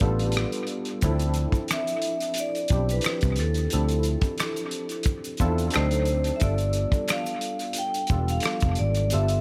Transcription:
0.00 0.44 A1 medium
0.00 1.04 G3 medium
0.00 0.02 B3 medium
0.00 0.96 B3 medium
0.00 0.02 D4 medium
0.00 0.96 D4 medium
0.00 0.02 F4 medium
0.00 0.96 F4 medium
0.00 0.03 A4 medium
0.00 0.96 A4 medium
0.00 0.65 B4 medium
0.00 kick medium
0.19 closed hi-hat soft
0.32 closed hi-hat medium
0.37 cross-stick medium
0.52 closed hi-hat soft
0.67 closed hi-hat medium
0.85 closed hi-hat soft
1.01 1.45 D2 loud
1.01 1.09 E3 medium
1.01 2.29 C4 medium
1.01 2.29 D4 medium
1.01 2.29 E4 medium
1.01 2.29 A4 medium
1.01 kick medium
1.01 closed hi-hat medium
1.01 maracas medium
1.09 2.31 F3 medium
1.19 closed hi-hat soft
1.19 maracas soft
1.34 closed hi-hat medium
1.34 maracas soft
1.52 muted picked electric bass stroke soft
1.52 kick medium
1.52 closed hi-hat soft
1.52 maracas soft
1.68 finger snap medium
1.68 cross-stick medium
1.68 closed hi-hat medium
1.68 maracas medium
1.73 2.41 E5 medium
1.87 closed hi-hat soft
1.87 maracas soft
2.02 closed hi-hat medium
2.20 closed hi-hat soft
2.20 maracas soft
2.34 closed hi-hat medium
2.34 maracas medium
2.40 2.92 D5 medium
2.55 closed hi-hat soft
2.55 maracas soft
2.68 2.99 B1 medium
2.68 3.65 F3 medium
2.68 3.66 C4 medium
2.68 3.66 D4 medium
2.68 3.66 E4 medium
2.68 kick medium
2.68 closed hi-hat medium
2.68 maracas soft
2.73 3.66 G4 medium
2.89 3.41 B4 medium
2.89 closed hi-hat soft
2.89 maracas soft
3.01 finger snap medium
3.01 closed hi-hat medium
3.01 maracas medium
3.06 cross-stick medium
3.21 3.40 C2 medium
3.21 kick medium
3.21 closed hi-hat soft
3.21 maracas soft
3.36 5.71 A4 medium
3.36 cross-stick soft
3.36 closed hi-hat medium
3.36 maracas soft
3.40 3.67 D#2 medium
3.54 closed hi-hat soft
3.54 maracas soft
3.70 4.16 D2 loud
3.70 4.98 F3 medium
3.70 4.98 C4 medium
3.70 4.98 D4 medium
3.70 4.98 E4 medium
3.70 4.99 A4 medium
3.70 closed hi-hat medium
3.70 maracas medium
3.89 closed hi-hat soft
3.89 maracas soft
4.03 closed hi-hat medium
4.03 maracas soft
4.21 muted picked electric bass stroke soft
4.21 kick medium
4.21 closed hi-hat soft
4.21 maracas soft
4.38 finger snap medium
4.38 cross-stick loud
4.38 closed hi-hat medium
4.38 maracas medium
4.56 closed hi-hat soft
4.56 maracas soft
4.71 closed hi-hat medium
4.89 closed hi-hat soft
4.89 maracas soft
5.03 kick loud
5.03 closed hi-hat medium
5.03 maracas medium
5.24 closed hi-hat soft
5.24 maracas soft
5.37 5.68 E2 medium
5.37 5.73 C4 medium
5.37 5.74 D4 medium
5.37 5.75 E4 medium
5.37 5.74 F4 medium
5.37 5.74 A4 medium
5.37 kick medium
5.37 closed hi-hat medium
5.37 maracas soft
5.58 closed hi-hat soft
5.58 maracas soft
5.70 5.81 F3 medium
5.70 6.37 C4 medium
5.70 finger snap medium
5.70 closed hi-hat medium
5.70 maracas medium
5.75 6.30 D2 medium
5.75 6.37 D4 medium
5.75 6.37 D#4 medium
5.75 6.38 A4 medium
5.75 6.38 C5 medium
5.75 cross-stick medium
5.80 6.40 F#3 medium
5.91 closed hi-hat soft
5.91 maracas soft
6.05 closed hi-hat medium
6.05 maracas soft
6.24 closed hi-hat soft
6.24 maracas soft
6.36 6.42 E5 medium
6.36 closed hi-hat medium
6.41 6.85 G1 loud
6.41 7.67 G3 medium
6.41 7.68 B3 medium
6.41 7.68 D4 medium
6.41 7.68 F4 medium
6.41 7.68 A4 medium
6.41 7.11 D5 medium
6.41 kick medium
6.41 maracas medium
6.58 closed hi-hat soft
6.58 maracas soft
6.73 closed hi-hat medium
6.73 maracas soft
6.92 muted picked electric bass stroke soft
6.92 kick medium
6.92 closed hi-hat soft
6.92 maracas soft
7.08 finger snap medium
7.08 cross-stick loud
7.08 closed hi-hat medium
7.08 maracas medium
7.12 7.80 F5 medium
7.26 closed hi-hat soft
7.26 maracas soft
7.41 closed hi-hat medium
7.59 closed hi-hat soft
7.59 maracas soft
7.73 closed hi-hat medium
7.73 maracas medium
7.78 8.31 G5 medium
7.94 closed hi-hat soft
7.94 maracas soft
8.07 9.05 G3 medium
8.07 9.05 B3 medium
8.07 9.05 D4 medium
8.07 kick medium
8.07 closed hi-hat medium
8.07 maracas soft
8.11 8.38 E1 medium
8.11 9.05 F4 medium
8.11 9.05 A4 medium
8.28 8.75 F5 medium
8.28 closed hi-hat soft
8.28 maracas soft
8.40 finger snap medium
8.40 closed hi-hat medium
8.40 maracas medium
8.46 cross-stick medium
8.60 8.75 F1 medium
8.60 kick medium
8.60 closed hi-hat soft
8.60 maracas soft
8.75 9.10 D5 medium
8.75 closed hi-hat medium
8.75 maracas soft
8.80 9.13 G#1 medium
8.94 closed hi-hat soft
8.94 maracas soft
9.10 9.41 G3 medium
9.10 9.41 B3 medium
9.10 9.41 D4 medium
9.10 9.41 F4 medium
9.10 9.41 A4 medium
9.10 9.41 E5 medium
9.10 closed hi-hat medium
9.10 maracas medium
9.14 9.41 G1 medium
9.28 closed hi-hat medium
9.28 maracas soft

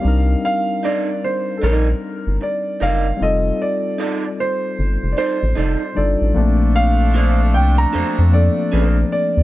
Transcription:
0.00 3.14 G3 medium
0.00 3.15 C4 medium
0.00 0.43 F5 medium
0.04 0.36 C2 loud
0.04 3.16 D4 medium
0.04 3.16 D#4 medium
0.04 3.17 A#4 medium
0.45 0.84 F5 medium
0.83 1.08 D#4 medium
0.83 1.09 A#4 medium
0.83 1.09 D5 medium
0.83 1.24 D5 medium
1.24 1.58 C5 medium
1.57 1.62 A4 medium
1.61 1.94 A#1 medium
1.61 1.72 D4 medium
1.61 1.87 A#4 medium
1.61 2.44 A#4 medium
1.61 1.88 D5 medium
1.72 1.87 D#4 medium
2.27 2.38 G1 medium
2.41 2.82 D5 medium
2.41 muted clean electric guitar stroke soft
2.80 3.12 F#1 medium
2.80 3.05 D#4 medium
2.80 3.06 A#4 medium
2.80 3.06 D5 medium
2.80 3.22 F5 medium
3.17 5.90 G3 medium
3.17 5.91 C4 medium
3.17 5.92 D#4 medium
3.21 3.52 F1 medium
3.21 5.93 F4 medium
3.21 5.94 A4 medium
3.21 3.61 D#5 medium
3.62 4.41 D5 medium
3.98 4.24 D#4 medium
3.98 4.24 A4 medium
3.98 4.24 D5 medium
4.40 5.16 C5 medium
4.79 4.98 G1 medium
5.03 5.15 F1 medium
5.12 5.17 D5 medium
5.17 5.37 D#4 medium
5.17 5.38 A4 medium
5.17 5.98 C5 medium
5.17 5.38 D5 medium
5.43 5.54 A1 medium
5.55 5.76 F1 medium
5.55 5.81 D#4 medium
5.55 5.82 A4 medium
5.55 5.82 D5 medium
5.95 6.16 G1 medium
5.95 6.35 G3 medium
5.95 6.35 D4 soft
5.95 6.35 D#4 soft
5.95 6.36 F4 medium
5.95 6.36 A4 medium
5.95 6.77 D5 medium
6.21 6.33 A1 medium
6.32 7.57 A#1 loud
6.32 8.27 F3 medium
6.32 9.07 F3 medium
6.32 9.07 A3 medium
6.32 8.28 A#3 medium
6.32 8.29 C4 medium
6.32 9.07 D4 medium
6.38 8.31 A3 medium
6.38 8.30 D4 medium
6.76 7.56 F5 medium
7.14 7.39 D4 medium
7.14 7.40 A4 medium
7.14 7.40 C5 loud
7.54 7.86 C2 loud
7.54 7.79 G5 medium
7.78 8.29 A#5 medium
7.93 8.04 F2 soft
7.93 8.18 D4 loud
7.93 8.18 A4 loud
7.93 8.19 C5 loud
8.19 8.49 F2 loud
8.31 9.43 F3 medium
8.31 9.43 A#3 soft
8.31 9.43 C4 soft
8.31 9.43 D4 soft
8.31 9.43 A4 medium
8.31 9.11 D5 medium
8.72 9.04 A#1 medium
8.72 8.83 C#4 medium
8.72 8.98 A4 medium
8.72 8.98 C5 medium
8.83 8.97 D4 medium
9.12 9.43 D5 medium
9.37 9.43 D#2 medium

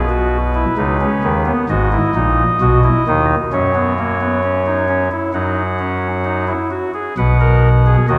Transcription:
0.00 0.65 B1 medium
0.00 0.65 B2 medium
0.00 1.43 B4 medium
0.09 0.37 F#4 medium
0.55 0.74 E4 medium
0.77 1.05 C#2 medium
0.77 1.06 C#3 medium
0.77 0.97 D#4 medium
1.01 1.29 C#4 medium
1.24 1.52 D#2 medium
1.24 1.52 D#3 medium
1.46 1.65 B3 medium
1.69 1.97 G#1 medium
1.69 1.97 G#2 medium
1.69 1.89 F#4 medium
1.69 3.26 D#5 medium
1.92 2.11 E4 medium
2.15 2.43 A#1 medium
2.15 2.43 A#2 medium
2.15 2.43 D#4 medium
2.61 2.89 B1 medium
2.61 2.89 B2 medium
2.61 2.80 F#4 medium
2.84 3.03 E4 medium
3.07 3.35 D#2 medium
3.07 3.35 D#3 medium
3.07 3.35 D#4 medium
3.53 5.09 F#2 medium
3.53 5.09 F#3 medium
3.53 3.72 C#4 medium
3.53 5.09 C#5 medium
3.75 3.94 B3 medium
3.99 4.18 A#3 medium
4.21 4.40 B3 medium
4.43 4.63 C#4 medium
4.66 4.85 D#4 medium
4.88 5.08 C#4 medium
5.11 5.31 E4 medium
5.34 6.53 F#2 medium
5.34 6.53 F#3 medium
5.34 5.62 D#4 medium
5.34 6.53 F#5 medium
5.79 6.08 C#4 medium
6.25 6.45 D#4 medium
6.48 6.68 E4 medium
6.71 6.91 F#4 medium
6.94 7.14 G#4 medium
7.18 7.97 B1 medium
7.18 7.97 B2 medium
7.18 7.38 B4 medium
7.18 7.97 F#5 medium
7.40 7.69 A#4 medium
7.86 8.06 G#4 medium
8.08 8.18 D#2 medium
8.08 8.18 D#3 medium
8.08 8.18 F#4 medium
8.08 8.18 D#5 medium

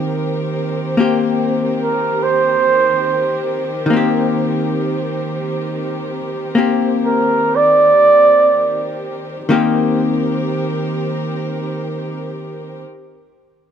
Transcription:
0.00 3.85 D#3 soft
0.00 9.45 D#3 medium
0.00 0.96 A#3 soft
0.00 0.98 C4 soft
0.00 9.45 C4 medium
0.00 0.99 G4 soft
0.00 9.45 G4 soft
0.00 9.45 A#4 medium
0.97 3.88 A#3 soft
0.97 3.88 C4 soft
0.97 3.89 G4 soft
1.83 2.24 A#4 medium
2.23 3.47 C5 medium
3.86 9.48 D#3 soft
3.90 6.54 A#3 soft
3.90 6.55 C4 soft
3.97 6.57 G4 soft
6.55 9.49 A#3 soft
6.55 9.50 C4 soft
6.55 9.50 G4 soft
7.06 7.57 A#4 medium
7.56 9.02 D5 medium
9.49 12.84 D#3 soft
9.49 12.80 D#3 medium
9.49 12.85 A#3 soft
9.49 12.80 C4 medium
9.49 12.86 C4 soft
9.49 12.79 G4 medium
9.49 12.86 G4 medium
9.49 12.79 A#4 medium

